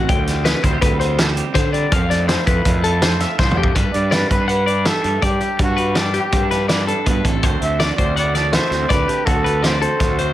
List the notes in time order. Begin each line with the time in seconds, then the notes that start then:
Already playing: G3
0.09 D2 D3 G5, kick, closed hi-hat
0.27 G3, snare, closed hi-hat
0.45 C4 B4, snare, closed hi-hat
0.63 D2 E4 C5, kick, closed hi-hat
0.73 G4
0.82 D2 G3 B4, kick, closed hi-hat
1.00 C4 C5, closed hi-hat
1.18 A4, snare, closed hi-hat
1.27 C5
1.36 G4, closed hi-hat
1.55 D3 C5, kick, snare, closed hi-hat
1.73 G3 D5, closed hi-hat
1.92 F2 F3 F5, kick, closed hi-hat
2.10 A3 D5, snare, closed hi-hat
2.28 E4 C5, snare, closed hi-hat
2.47 F2 F4 B4, kick, closed hi-hat
2.65 F2 A3, kick, closed hi-hat
2.84 E4 A4, closed hi-hat
3.02 A4 C5, snare, closed hi-hat
3.20 F4 E5, snare, closed hi-hat
3.39 C2 F3 C5, kick, snare
3.51 mid tom
3.57 F2 A3 G4
3.63 kick
3.75 G2 B4, kick, closed hi-hat
3.93 G2 G3 D5, closed hi-hat
4.11 G4 B4 D5, snare, closed hi-hat
4.29 G2 C4 B4, kick, closed hi-hat
4.41 D4
4.48 G4 B4 F#5, closed hi-hat
4.66 G4 D5, closed hi-hat
4.85 G4 A4 E5, snare, closed hi-hat
5.04 G2 D4, closed hi-hat
5.22 G2 G4 D5, kick, closed hi-hat
5.40 G3 G4, closed hi-hat
5.59 G2 F#4, kick, closed hi-hat
5.77 G3 B4, closed hi-hat
5.95 D4 G4 D5, snare, closed hi-hat
6.14 D4 G4, closed hi-hat
6.32 G2 C4, kick, closed hi-hat
6.43 D4
6.51 D4 B4, snare, closed hi-hat
6.68 B4 D5, snare, closed hi-hat
6.87 D4 A4, closed hi-hat
7.06 G2 B2 B4, kick, closed hi-hat
7.25 A1 C3 A4, kick, closed hi-hat
7.42 D2 D3 A3 C4 F#4 A4 C5, kick, closed hi-hat
7.61 D2 A3 E5, closed hi-hat
7.80 F#4 D5, snare, closed hi-hat
7.98 D2 C4 C5, kick, closed hi-hat
8.16 E4 D5 F#5, closed hi-hat
8.27 F#4
8.35 A4 D5, snare, closed hi-hat
8.53 F#4 C5 E5, snare, closed hi-hat
8.71 D2 C4, snare, closed hi-hat
8.89 D2 D3 B4 D5, kick, snare, closed hi-hat
9.08 A3 G4, closed hi-hat
9.26 D2 D3 F#4 A4, kick, closed hi-hat
9.44 A3 B4, closed hi-hat
9.62 E4 C5 D5, snare, closed hi-hat
9.74 F#4
9.81 C4 A4 C5, closed hi-hat
10.00 D2 F#4, kick, snare, closed hi-hat
10.19 F#4 C5, closed hi-hat